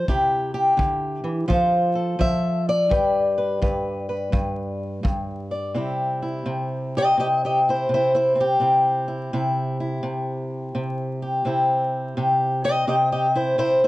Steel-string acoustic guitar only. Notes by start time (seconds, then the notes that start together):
0.08 C3 E4 G4
0.54 G4
0.77 D3
1.24 E3
1.48 F3 F4 A4 C5
1.95 A4
2.19 F3 E5
2.69 D5
2.89 G2 G4 B4
3.38 B4
3.62 G2 B4
4.09 B4
4.32 G2
5.03 G2
5.51 D5
5.74 C3 C4 E4 G4
6.22 E4
6.46 C3
6.97 G4 D#5
7.17 C3 G4 D#5
7.45 G4 D#5
7.69 E4 C5
7.89 C3
7.94 E4 C5
8.15 E4 C5
8.35 C4
8.40 G4
8.60 C3 C4 E4
9.08 E4
9.33 C3 E4
9.80 E4
10.03 C3
10.75 C3
11.22 G4
11.45 C3 C4 E4 G4
12.17 C3 G4
12.64 G4 D#5
12.87 C3 G4 D#5
13.12 G4 D#5
13.35 E4 C5
13.58 C3 E4 C5
13.84 E4 C5